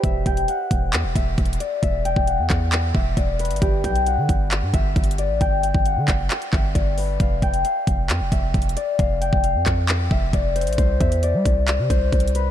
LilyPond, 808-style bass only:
\new Staff \with { instrumentName = "808-style bass" } { \clef bass \time 4/4 \key e \minor \tempo 4 = 134 e,,8 e,,8 r8 e,,8 e,16 e,,16 e,,8 e,,8 r8 | e,,8. e,,8 e,16 e,4 e,,8 e,,8. g,,16 | g,,8 b,,8. d16 g,,8. g,16 g,,8 g,,8. a,,16 | g,,8. g,,8 d16 fis,,8 r8 g,,8 g,,4 |
f,,8 f,,8 r8 f,,8 f,16 f,,16 f,,8 f,,8 r8 | f,,8. f,,8 f,16 f,4 f,,8 f,,8. a,,16 | c,8 e,8. g16 c,8. c16 c,8 c,4 | }